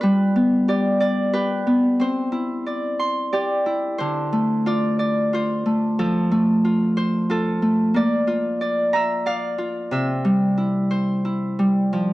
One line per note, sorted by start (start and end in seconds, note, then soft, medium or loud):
0.00 2.04 G3 medium
0.00 2.22 F4 medium
0.00 1.33 B4 medium
0.00 0.68 D5 medium
0.36 1.66 B3 medium
0.68 1.34 G4 medium
0.68 1.00 D5 medium
1.00 2.66 D5 medium
1.33 3.33 G4 medium
1.33 2.06 B4 medium
1.67 2.06 B3 medium
2.00 5.00 C4 medium
2.00 3.98 C5 medium
2.32 3.66 E4 medium
2.66 3.32 D5 medium
2.99 4.30 C6 medium
3.33 5.68 G4 medium
3.33 4.66 D5 medium
3.66 4.72 E4 medium
3.98 6.03 D3 medium
3.98 5.34 C5 medium
4.33 5.65 A3 medium
4.66 5.33 F4 medium
4.66 4.99 D5 medium
4.99 6.84 D5 medium
5.33 6.64 F4 medium
5.33 6.96 C5 medium
5.66 6.31 A3 medium
5.99 7.99 F3 medium
5.99 7.30 A4 medium
6.31 7.62 A3 medium
6.64 7.29 F4 medium
6.97 8.95 C5 medium
7.30 8.27 F4 medium
7.30 8.00 A4 medium
7.62 8.00 A3 medium
7.94 11.16 A#3 medium
7.94 8.61 D5 medium
8.27 9.58 F4 medium
8.61 9.26 D5 medium
8.93 9.32 E5 medium
8.93 10.33 A#5 medium
9.26 11.11 D5 medium
9.26 9.98 F5 loud
9.58 9.98 F4 medium
9.91 11.97 C3 medium
9.91 11.65 E5 medium
10.25 11.58 G3 medium
10.57 11.24 E4 medium
10.91 12.13 C5 medium
11.25 11.99 E4 medium
11.59 11.97 G3 medium
11.93 12.13 F3 medium